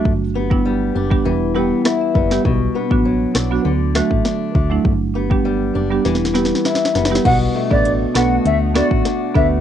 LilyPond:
<<
  \new Staff \with { instrumentName = "Flute" } { \time 4/4 \key b \minor \tempo 4 = 100 r1 | r1 | r1 | fis''16 r8 d''8 r16 fis''8 e''16 r16 d''16 r8. e''16 r16 | }
  \new Staff \with { instrumentName = "Marimba" } { \time 4/4 \key b \minor << { r2 r8 g''8 fis''16 e''16 d''8 | r1 | r1 | r1 | } \\ { r8 <d' g'>16 <g b d' e'>16 r8 <d' g'>16 <g b d' g'>16 r8 <g b e' g'>16 r8. <e' g'>16 <g b e' g'>16 | r8 <d' fis'>16 <fis b d' fis'>16 r8 <d' e'>16 <fis b d' fis'>16 r8 <fis a d' fis'>16 r8. <d' fis'>16 <fis a d' e'>16 | r8 <d' g'>16 <g b d' g'>16 r8 <d' g'>16 <g b d' g'>16 r8 <g b e' g'>16 r8. <e' g'>16 <g b e' g'>16 | r8 <a' b'>16 <b d' fis' a' b'>16 r8 <b d' fis' a' b'>16 r8. <b d' fis' a' d''>16 r8. <b d' fis' a' b'>16 r16 | } >> }
  \new Staff \with { instrumentName = "Analog synth pad" } { \time 4/4 \key b \minor r1 | r1 | r1 | <a b d'>1 | }
  \new Staff \with { instrumentName = "Steel-string acoustic guitar" } { \time 4/4 \key b \minor r8 b8 g8 d'8 e8 b8 e'8 b8 | b,8 b8 fis8 d'8 d8 a8 d'8 a8 | r8 b8 g8 d'8 e8 b8 e'8 b8 | b,8 a8 d'8 fis'8 a8 fis'8 d'8 a8 | }
  \new Staff \with { instrumentName = "FM bass" } { \clef bass \time 4/4 \key b \minor g,,4. fis,,8 e,,4 r8 fis,,8 | b,,8 r16 a,,8. b,,8 d,8. a,,16 r8 d,8 | g,,4. fis,,8 e,,4 r8 fis,,8 | b,,8 r16 a,,8. b,,8 d,8. a,,16 r8 d,8 | }
  \new DrumStaff \with { instrumentName = "Drums" } \drummode { \time 4/4 bd8. bd16 r8. bd16 r4 <ss sn>8 bd16 sn16 | bd8. bd16 r8 <ss sn>8 r8 <ss sn>16 bd16 sn8 bd8 | bd8. bd16 r4 \tuplet 3/2 { sn16 sn16 sn16 sn16 sn16 sn16 sn16 sn16 sn16 sn16 sn16 sn16 } | <cymc hh bd>8. bd16 hh8 <ss sn>8 hh8 <ss sn>16 bd16 <hh sn>8 bd8 | }
>>